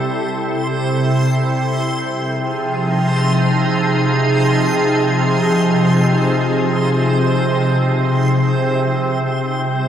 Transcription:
0.00 9.88 C3 medium
0.00 1.82 G3 medium
0.00 1.81 E4 medium
0.00 1.80 A4 medium
0.00 9.21 C5 medium
0.00 9.22 C6 medium
2.14 9.19 F3 medium
2.25 9.19 G#4 medium
2.39 9.21 D#4 medium
9.47 9.88 G3 medium

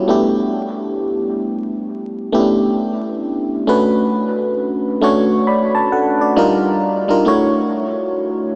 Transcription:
0.00 0.34 G3 soft
0.00 0.10 C#4 medium
0.00 0.09 E4 medium
0.00 0.10 F4 medium
0.00 0.10 F#4 medium
0.00 0.10 G4 medium
0.00 0.10 A4 medium
0.08 1.63 A3 medium
0.08 1.63 B3 medium
0.08 1.64 D4 medium
0.08 1.64 E4 medium
0.08 1.65 G4 medium
2.32 3.51 A3 medium
2.32 3.51 B3 medium
2.32 2.41 C#4 medium
2.32 3.52 E4 medium
2.32 3.52 G4 medium
2.40 3.55 D4 medium
3.67 4.85 A3 medium
3.67 4.86 C#4 medium
3.67 4.86 D4 medium
3.67 4.86 F#4 medium
3.67 4.86 B4 medium
5.01 6.36 A3 medium
5.01 6.36 C#4 medium
5.01 6.35 D4 medium
5.01 5.47 F#4 medium
5.01 5.47 C#5 medium
5.47 5.73 D5 medium
5.47 5.73 B5 medium
5.75 5.91 C#5 medium
5.75 5.90 A5 medium
5.92 6.18 A4 medium
5.92 6.18 F#5 medium
6.21 6.62 F#4 medium
6.21 6.62 D5 medium
6.36 6.96 G3 loud
6.36 6.96 D4 medium
6.36 6.96 D#4 medium
6.36 6.96 F4 medium
6.36 6.97 A#4 loud
7.08 7.22 G3 medium
7.08 7.23 D4 medium
7.08 7.23 D#4 medium
7.08 7.23 F4 medium
7.08 7.23 A#4 medium
7.25 8.43 A3 medium
7.25 8.44 D4 medium
7.25 8.44 E4 medium
7.25 8.44 F#4 medium
7.25 8.45 C#5 medium

